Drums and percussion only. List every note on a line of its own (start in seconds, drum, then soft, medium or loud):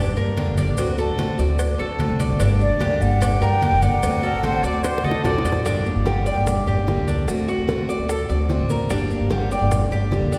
0.16 high conga soft
0.16 maracas soft
0.37 cowbell medium
0.37 high conga medium
0.37 maracas soft
0.57 cowbell medium
0.57 high conga medium
0.57 maracas medium
0.77 cowbell loud
0.77 high conga soft
0.77 maracas medium
0.98 high conga soft
0.98 maracas soft
1.19 cowbell medium
1.19 high conga loud
1.19 maracas soft
1.39 high conga soft
1.39 maracas medium
1.59 cowbell loud
1.59 high conga soft
1.59 maracas medium
1.79 high conga soft
1.79 maracas soft
1.99 cowbell medium
1.99 high conga medium
1.99 maracas soft
2.20 cowbell medium
2.20 high conga medium
2.20 maracas medium
2.40 cowbell medium
2.40 maracas medium
2.61 high conga soft
2.61 maracas soft
2.81 cowbell medium
2.81 high conga loud
2.81 maracas soft
3.01 high conga soft
3.01 maracas medium
3.22 cowbell loud
3.22 high conga soft
3.22 low conga medium
3.22 maracas loud
3.42 high conga soft
3.42 maracas soft
3.62 cowbell medium
3.62 high conga medium
3.62 maracas soft
3.82 cowbell medium
3.82 high conga medium
3.82 maracas medium
4.03 cowbell loud
4.03 high conga soft
4.03 maracas medium
4.23 high conga soft
4.23 maracas soft
4.43 cowbell medium
4.43 high conga loud
4.43 maracas soft
4.64 high conga soft
4.64 maracas medium
4.84 cowbell loud
4.84 high bongo medium
4.84 high conga soft
4.84 maracas loud
4.98 high bongo medium
5.04 high conga medium
5.04 maracas soft
5.11 low bongo medium
5.24 cowbell medium
5.24 low bongo medium
5.24 low conga loud
5.24 maracas soft
5.38 low bongo medium
5.45 cowbell medium
5.45 low conga medium
5.45 maracas medium
5.52 low bongo medium
5.65 high bongo medium
5.65 high conga soft
5.65 maracas medium
5.85 high bongo soft
5.85 high conga soft
5.85 maracas soft
6.06 high bongo medium
6.06 high conga medium
6.06 maracas soft
6.26 high bongo soft
6.26 high conga soft
6.26 maracas medium
6.46 high bongo medium
6.46 high conga soft
6.46 low conga medium
6.46 maracas medium
6.67 high conga soft
6.67 low conga medium
6.67 maracas soft
6.88 high bongo soft
6.88 low bongo medium
6.88 high conga medium
6.88 maracas soft
7.07 high bongo soft
7.07 high conga medium
7.07 maracas medium
7.28 high bongo medium
7.28 high conga soft
7.28 maracas medium
7.48 high bongo soft
7.48 high conga soft
7.48 maracas soft
7.69 high bongo medium
7.69 high conga medium
7.69 maracas soft
7.89 high bongo soft
7.89 high conga soft
7.89 maracas medium
8.09 high bongo medium
8.09 high conga soft
8.09 maracas medium
8.29 high conga soft
8.29 maracas soft
8.49 high bongo soft
8.49 low bongo medium
8.49 high conga medium
8.49 maracas soft
8.69 high bongo soft
8.69 high conga medium
8.69 maracas medium
8.90 high bongo medium
8.90 high conga soft
8.90 maracas medium
9.10 high bongo soft
9.10 high conga soft
9.10 maracas soft
9.30 high bongo medium
9.30 high conga medium
9.30 maracas soft
9.51 high bongo soft
9.51 high conga soft
9.51 maracas medium
9.71 high bongo medium
9.71 high conga soft
9.71 low conga medium
9.71 maracas medium
9.91 high conga soft
9.91 maracas soft
10.12 high bongo soft
10.12 low bongo medium
10.12 high conga medium
10.12 maracas soft
10.32 high bongo soft
10.32 high conga medium
10.32 maracas medium